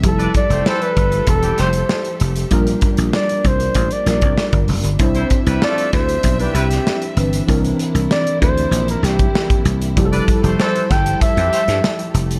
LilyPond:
<<
  \new Staff \with { instrumentName = "Flugelhorn" } { \time 4/4 \key c \major \tempo 4 = 97 a'8 d''8 c''16 b'8. a'8 c''4 r8 | r4 d''8 c''8. d''16 d''4 r8 | r4 d''8 c''8. b'16 g'4 r8 | r4 d''8 c''8. bes'16 g'4 r8 |
r4 c''8 g''8 e''4. r8 | }
  \new Staff \with { instrumentName = "Horn section" } { \time 4/4 \key c \major r16 <d' b' d''>16 r16 <a g' c''>16 <e c' a'>8 r8. <e c' g'>16 <a g' c''>16 r4 r16 | r1 | r16 <g e' c''>16 r16 <g e' b'>16 <a f' a'>8 r8. <e d' g'>16 <g e' b'>16 r4 r16 | r1 |
r16 <d' b' d''>16 r16 <a g' c''>16 <e c' a'>8 r8. <e c' g'>16 <a g' c''>16 r4 r16 | }
  \new Staff \with { instrumentName = "String section" } { \time 4/4 \key c \major << { <g a' e''>1 | bes1 | <g c' e''>1 | <c bes e'>1 |
<g e' a'>1 | } \\ { g'1 | d'1 | d'1~ | d'1 |
g'1 | } >> }
  \new Staff \with { instrumentName = "Tine electric piano" } { \time 4/4 \key c \major <f g e' g' a'>1 | <g d' f' bes'>2~ <g d' f' bes'>8 <g d' f' bes'>4. | <c' d' e' c''>2.~ <c' d' e' c''>8 <e c' d' b'>8 | <e c' d' bes'>1 |
<f g e' g' a'>1 | }
  \new Staff \with { instrumentName = "Slap bass" } { \clef bass \time 4/4 \key c \major f,,8 r16 f,,16 r8 g,,8 e,,8 f,,8 r8 f,,8 | bes,,8 r16 bes,,16 r8 c,8 a,,16 r16 bes,,16 c,16 r16 g,,16 f,,16 g,,16 | c,8 r16 c,16 r8 d,8 b,,8 c,8 r8 g,,8 | c,8 r16 c,16 r8 d,8 bes,,8 c,8 r8 c,8 |
f,,8 r16 f,,16 r8 g,,8 r16 f,16 r16 g,16 r8 f,,8 | }
  \new DrumStaff \with { instrumentName = "Drums" } \drummode { \time 4/4 <hh bd>16 hh16 <hh bd>16 hh16 sn16 hh16 <hh bd>16 hh16 <hh bd>16 hh16 <hh sn>16 hh16 sn16 hh16 hh16 hh16 | <hh bd>16 hh16 <hh bd>16 hh16 sn16 hh16 <hh bd>16 hh16 <hh bd>16 hh16 <hh sn>16 <hh bd>16 sn16 <hh bd>16 hho16 hh16 | <hh bd>16 hh16 <hh bd>16 hh16 sn16 hh16 <hh bd sn>16 hh16 <hh bd>16 hh16 hh16 <hh sn>16 sn16 hh16 hh16 hh16 | <hh bd>16 hh16 hh16 hh16 sn16 hh16 <hh bd>16 hh16 hh16 hh16 <hh sn>16 <hh bd>16 sn16 <hh bd>16 hh16 hh16 |
<hh bd>16 hh16 <hh bd>16 hh16 sn16 hh16 <hh bd sn>16 hh16 <hh bd>16 hh16 hh16 <hh sn>16 sn16 hh16 hh16 hh16 | }
>>